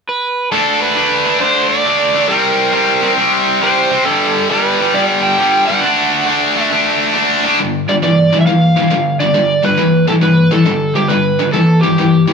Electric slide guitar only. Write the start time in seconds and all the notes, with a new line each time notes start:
0.09 B4
0.52 A4
0.82 B4
1.41 C5
1.70 D5
2.28 A#4
3.63 C5
4.05 A4
4.51 B4
4.95 D5
5.23 G5
5.67 F#5
6.62 E5
7.89 D5
8.04 D5
8.41 E5
8.46 F5
9.20 D5
9.65 B4
10.09 A4
10.23 B4
10.52 A4
10.95 G4
11.08 B4
11.53 A4
11.81 G4